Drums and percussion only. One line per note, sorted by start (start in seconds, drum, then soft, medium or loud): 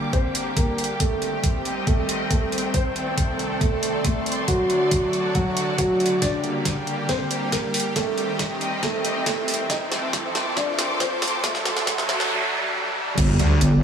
0.13 kick loud
0.13 closed hi-hat medium
0.35 closed hi-hat medium
0.57 kick medium
0.57 closed hi-hat medium
0.78 closed hi-hat medium
0.84 closed hi-hat medium
1.00 kick medium
1.00 closed hi-hat medium
1.22 closed hi-hat medium
1.44 kick medium
1.44 closed hi-hat medium
1.65 closed hi-hat medium
1.87 kick loud
1.87 closed hi-hat medium
2.09 closed hi-hat medium
2.31 kick medium
2.31 closed hi-hat medium
2.52 closed hi-hat medium
2.58 closed hi-hat medium
2.74 kick loud
2.74 closed hi-hat medium
2.96 closed hi-hat medium
3.18 kick medium
3.18 closed hi-hat medium
3.39 closed hi-hat soft
3.61 kick loud
3.61 closed hi-hat medium
3.83 closed hi-hat medium
4.05 kick loud
4.05 closed hi-hat medium
4.26 closed hi-hat medium
4.32 closed hi-hat medium
4.48 kick loud
4.48 closed hi-hat medium
4.70 closed hi-hat medium
4.91 kick loud
4.91 closed hi-hat medium
5.13 closed hi-hat soft
5.35 kick medium
5.35 closed hi-hat medium
5.57 closed hi-hat medium
5.78 kick loud
5.78 closed hi-hat medium
6.00 closed hi-hat soft
6.06 closed hi-hat medium
6.22 kick loud
6.22 snare soft
6.22 closed hi-hat medium
6.44 closed hi-hat soft
6.65 kick medium
6.65 snare soft
6.65 closed hi-hat medium
6.87 closed hi-hat soft
7.09 kick medium
7.09 snare medium
7.09 closed hi-hat medium
7.31 closed hi-hat medium
7.52 kick loud
7.52 snare medium
7.52 closed hi-hat medium
7.74 open hi-hat medium
7.80 closed hi-hat medium
7.96 kick loud
7.96 snare medium
7.96 closed hi-hat medium
8.18 closed hi-hat soft
8.39 kick loud
8.39 snare medium
8.39 closed hi-hat medium
8.61 closed hi-hat soft
8.83 kick loud
8.83 snare medium
8.83 closed hi-hat soft
9.05 closed hi-hat medium
9.26 kick loud
9.26 snare medium
9.26 closed hi-hat medium
9.48 open hi-hat medium
9.54 closed hi-hat medium
9.70 kick loud
9.70 snare medium
9.70 closed hi-hat medium
9.92 snare medium
9.92 closed hi-hat soft
10.13 kick loud
10.13 snare medium
10.13 closed hi-hat medium
10.35 snare medium
10.35 closed hi-hat soft
10.57 kick loud
10.57 snare medium
10.57 closed hi-hat medium
10.79 snare medium
10.79 closed hi-hat medium
11.00 kick medium
11.00 snare medium
11.00 closed hi-hat medium
11.22 snare medium
11.22 open hi-hat loud
11.28 closed hi-hat medium
11.44 kick loud
11.44 snare loud
11.44 closed hi-hat medium
11.55 snare medium
11.65 snare medium
11.65 closed hi-hat medium
11.77 snare medium
11.77 closed hi-hat soft
11.87 kick medium
11.87 snare medium
11.87 closed hi-hat medium
11.98 snare medium
12.09 snare loud
12.09 closed hi-hat medium
12.20 snare medium
13.18 kick loud
13.18 closed hi-hat medium
13.18 crash loud
13.39 closed hi-hat medium
13.61 closed hi-hat medium